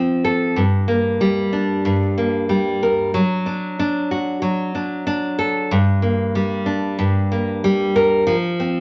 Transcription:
0, 0, Header, 1, 2, 480
1, 0, Start_track
1, 0, Key_signature, -2, "minor"
1, 0, Tempo, 643777
1, 418, Time_signature, 4, 2, 24, 8
1, 6563, End_track
2, 0, Start_track
2, 0, Title_t, "Nylon-string guitar"
2, 0, Program_c, 0, 24
2, 0, Note_on_c, 0, 53, 74
2, 0, Note_on_c, 0, 60, 58
2, 0, Note_on_c, 0, 65, 53
2, 182, Note_on_c, 0, 69, 62
2, 420, Note_on_c, 0, 43, 72
2, 462, Note_off_c, 0, 65, 0
2, 465, Note_off_c, 0, 53, 0
2, 467, Note_off_c, 0, 60, 0
2, 468, Note_off_c, 0, 69, 0
2, 655, Note_on_c, 0, 58, 57
2, 901, Note_on_c, 0, 55, 62
2, 1139, Note_on_c, 0, 62, 52
2, 1371, Note_off_c, 0, 43, 0
2, 1380, Note_on_c, 0, 43, 78
2, 1613, Note_off_c, 0, 58, 0
2, 1622, Note_on_c, 0, 58, 57
2, 1849, Note_off_c, 0, 55, 0
2, 1858, Note_on_c, 0, 55, 62
2, 2108, Note_on_c, 0, 70, 61
2, 2338, Note_off_c, 0, 55, 0
2, 2341, Note_on_c, 0, 54, 71
2, 2390, Note_off_c, 0, 43, 0
2, 2391, Note_off_c, 0, 58, 0
2, 2393, Note_off_c, 0, 70, 0
2, 2580, Note_off_c, 0, 62, 0
2, 2580, Note_on_c, 0, 62, 52
2, 2826, Note_off_c, 0, 62, 0
2, 2829, Note_on_c, 0, 62, 66
2, 3066, Note_on_c, 0, 66, 58
2, 3285, Note_off_c, 0, 54, 0
2, 3294, Note_on_c, 0, 54, 80
2, 3537, Note_off_c, 0, 62, 0
2, 3540, Note_on_c, 0, 62, 56
2, 3775, Note_off_c, 0, 62, 0
2, 3778, Note_on_c, 0, 62, 66
2, 4015, Note_on_c, 0, 69, 63
2, 4260, Note_on_c, 0, 43, 79
2, 4305, Note_off_c, 0, 54, 0
2, 4306, Note_off_c, 0, 69, 0
2, 4311, Note_off_c, 0, 66, 0
2, 4488, Note_off_c, 0, 62, 0
2, 4491, Note_on_c, 0, 58, 53
2, 4736, Note_on_c, 0, 55, 66
2, 4965, Note_on_c, 0, 62, 59
2, 5200, Note_off_c, 0, 43, 0
2, 5209, Note_on_c, 0, 43, 78
2, 5446, Note_off_c, 0, 58, 0
2, 5455, Note_on_c, 0, 58, 54
2, 5688, Note_off_c, 0, 55, 0
2, 5697, Note_on_c, 0, 55, 66
2, 5933, Note_on_c, 0, 70, 66
2, 6161, Note_off_c, 0, 55, 0
2, 6164, Note_on_c, 0, 53, 80
2, 6216, Note_off_c, 0, 62, 0
2, 6218, Note_off_c, 0, 43, 0
2, 6222, Note_off_c, 0, 58, 0
2, 6222, Note_off_c, 0, 70, 0
2, 6410, Note_on_c, 0, 60, 61
2, 6563, Note_off_c, 0, 53, 0
2, 6563, Note_off_c, 0, 60, 0
2, 6563, End_track
0, 0, End_of_file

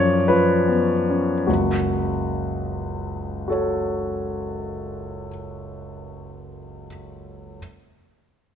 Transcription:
0, 0, Header, 1, 2, 480
1, 0, Start_track
1, 0, Key_signature, 3, "minor"
1, 0, Tempo, 779221
1, 909, Time_signature, 6, 3, 24, 8
1, 910, Tempo, 664452
1, 2350, Tempo, 647948
1, 6114, End_track
2, 0, Start_track
2, 0, Title_t, "Grand piano"
2, 0, Program_c, 0, 0
2, 0, Control_c, 0, 64, 127
2, 0, Note_on_c, 0, 42, 42
2, 0, Note_on_c, 0, 53, 30
2, 0, Note_on_c, 0, 61, 33
2, 0, Note_on_c, 0, 73, 55
2, 0, Note_on_c, 0, 74, 56
2, 91, Note_off_c, 0, 53, 0
2, 173, Note_on_c, 0, 71, 48
2, 176, Note_off_c, 0, 73, 0
2, 179, Note_on_c, 0, 53, 27
2, 321, Note_off_c, 0, 61, 0
2, 416, Note_off_c, 0, 71, 0
2, 419, Note_on_c, 0, 59, 27
2, 571, Note_off_c, 0, 53, 0
2, 678, Note_on_c, 0, 61, 27
2, 824, Note_off_c, 0, 59, 0
2, 886, Note_off_c, 0, 42, 0
2, 905, Note_on_c, 0, 66, 37
2, 910, Note_off_c, 0, 61, 0
2, 910, Note_on_c, 0, 37, 27
2, 911, Note_on_c, 0, 30, 30
2, 925, Control_c, 0, 64, 0
2, 927, Note_off_c, 0, 74, 0
2, 1063, Control_c, 0, 64, 127
2, 2344, Note_off_c, 0, 66, 0
2, 2355, Note_on_c, 0, 66, 26
2, 2369, Note_on_c, 0, 69, 24
2, 2383, Note_on_c, 0, 73, 24
2, 3690, Note_off_c, 0, 37, 0
2, 3691, Note_off_c, 0, 30, 0
2, 4859, Note_off_c, 0, 66, 0
2, 4866, Note_off_c, 0, 69, 0
2, 4873, Note_off_c, 0, 73, 0
2, 5400, Control_c, 0, 64, 0
2, 6114, End_track
0, 0, End_of_file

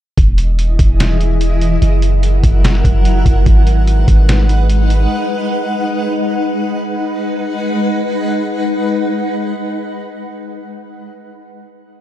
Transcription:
0, 0, Header, 1, 4, 480
1, 0, Start_track
1, 0, Key_signature, 5, "minor"
1, 0, Tempo, 410959
1, 206, Time_signature, 4, 2, 24, 8
1, 14027, End_track
2, 0, Start_track
2, 0, Title_t, "Ambient pad"
2, 0, Program_c, 0, 92
2, 205, Note_on_c, 0, 52, 85
2, 205, Note_on_c, 0, 64, 77
2, 205, Note_on_c, 0, 68, 79
2, 205, Note_on_c, 0, 75, 94
2, 2106, Note_off_c, 0, 52, 0
2, 2106, Note_off_c, 0, 64, 0
2, 2106, Note_off_c, 0, 68, 0
2, 2106, Note_off_c, 0, 75, 0
2, 2126, Note_on_c, 0, 54, 89
2, 2126, Note_on_c, 0, 64, 76
2, 2126, Note_on_c, 0, 70, 77
2, 2126, Note_on_c, 0, 78, 96
2, 4026, Note_off_c, 0, 54, 0
2, 4026, Note_off_c, 0, 64, 0
2, 4026, Note_off_c, 0, 70, 0
2, 4044, Note_on_c, 0, 63, 78
2, 4045, Note_on_c, 0, 56, 85
2, 4045, Note_on_c, 0, 71, 80
2, 7839, Note_off_c, 0, 78, 0
2, 7846, Note_off_c, 0, 63, 0
2, 7847, Note_off_c, 0, 56, 0
2, 7847, Note_off_c, 0, 71, 0
2, 7886, Note_on_c, 0, 56, 82
2, 7886, Note_on_c, 0, 71, 75
2, 7886, Note_on_c, 0, 78, 96
2, 7887, Note_on_c, 0, 63, 79
2, 12613, Note_off_c, 0, 56, 0
2, 12613, Note_off_c, 0, 71, 0
2, 12613, Note_off_c, 0, 78, 0
2, 12614, Note_off_c, 0, 63, 0
2, 14027, End_track
3, 0, Start_track
3, 0, Title_t, "808-style bass"
3, 0, Program_c, 1, 38
3, 205, Note_on_c, 1, 28, 113
3, 896, Note_off_c, 1, 28, 0
3, 924, Note_on_c, 1, 28, 101
3, 2078, Note_off_c, 1, 28, 0
3, 2125, Note_on_c, 1, 30, 109
3, 2816, Note_off_c, 1, 30, 0
3, 2844, Note_on_c, 1, 30, 103
3, 3305, Note_off_c, 1, 30, 0
3, 3324, Note_on_c, 1, 30, 102
3, 3786, Note_off_c, 1, 30, 0
3, 3804, Note_on_c, 1, 30, 102
3, 4035, Note_off_c, 1, 30, 0
3, 4045, Note_on_c, 1, 32, 113
3, 4736, Note_off_c, 1, 32, 0
3, 4764, Note_on_c, 1, 32, 101
3, 5918, Note_off_c, 1, 32, 0
3, 14027, End_track
4, 0, Start_track
4, 0, Title_t, "Drums"
4, 204, Note_on_c, 9, 42, 76
4, 205, Note_on_c, 9, 36, 117
4, 321, Note_off_c, 9, 36, 0
4, 321, Note_off_c, 9, 42, 0
4, 443, Note_on_c, 9, 42, 76
4, 560, Note_off_c, 9, 42, 0
4, 686, Note_on_c, 9, 42, 85
4, 803, Note_off_c, 9, 42, 0
4, 924, Note_on_c, 9, 36, 97
4, 924, Note_on_c, 9, 42, 83
4, 1041, Note_off_c, 9, 36, 0
4, 1041, Note_off_c, 9, 42, 0
4, 1169, Note_on_c, 9, 42, 86
4, 1172, Note_on_c, 9, 38, 112
4, 1285, Note_off_c, 9, 42, 0
4, 1289, Note_off_c, 9, 38, 0
4, 1408, Note_on_c, 9, 42, 64
4, 1525, Note_off_c, 9, 42, 0
4, 1645, Note_on_c, 9, 42, 82
4, 1762, Note_off_c, 9, 42, 0
4, 1886, Note_on_c, 9, 42, 68
4, 2003, Note_off_c, 9, 42, 0
4, 2125, Note_on_c, 9, 42, 73
4, 2242, Note_off_c, 9, 42, 0
4, 2363, Note_on_c, 9, 42, 73
4, 2480, Note_off_c, 9, 42, 0
4, 2605, Note_on_c, 9, 42, 87
4, 2722, Note_off_c, 9, 42, 0
4, 2844, Note_on_c, 9, 36, 101
4, 2844, Note_on_c, 9, 42, 81
4, 2961, Note_off_c, 9, 36, 0
4, 2961, Note_off_c, 9, 42, 0
4, 3088, Note_on_c, 9, 42, 86
4, 3092, Note_on_c, 9, 38, 114
4, 3205, Note_off_c, 9, 42, 0
4, 3208, Note_off_c, 9, 38, 0
4, 3324, Note_on_c, 9, 36, 94
4, 3328, Note_on_c, 9, 42, 64
4, 3441, Note_off_c, 9, 36, 0
4, 3445, Note_off_c, 9, 42, 0
4, 3564, Note_on_c, 9, 42, 84
4, 3681, Note_off_c, 9, 42, 0
4, 3804, Note_on_c, 9, 36, 93
4, 3805, Note_on_c, 9, 42, 67
4, 3921, Note_off_c, 9, 36, 0
4, 3922, Note_off_c, 9, 42, 0
4, 4044, Note_on_c, 9, 42, 78
4, 4045, Note_on_c, 9, 36, 118
4, 4161, Note_off_c, 9, 36, 0
4, 4161, Note_off_c, 9, 42, 0
4, 4283, Note_on_c, 9, 42, 74
4, 4400, Note_off_c, 9, 42, 0
4, 4526, Note_on_c, 9, 42, 89
4, 4643, Note_off_c, 9, 42, 0
4, 4764, Note_on_c, 9, 36, 96
4, 4764, Note_on_c, 9, 42, 83
4, 4881, Note_off_c, 9, 36, 0
4, 4881, Note_off_c, 9, 42, 0
4, 5008, Note_on_c, 9, 42, 86
4, 5011, Note_on_c, 9, 38, 109
4, 5125, Note_off_c, 9, 42, 0
4, 5128, Note_off_c, 9, 38, 0
4, 5248, Note_on_c, 9, 42, 65
4, 5365, Note_off_c, 9, 42, 0
4, 5484, Note_on_c, 9, 42, 84
4, 5601, Note_off_c, 9, 42, 0
4, 5725, Note_on_c, 9, 42, 67
4, 5842, Note_off_c, 9, 42, 0
4, 14027, End_track
0, 0, End_of_file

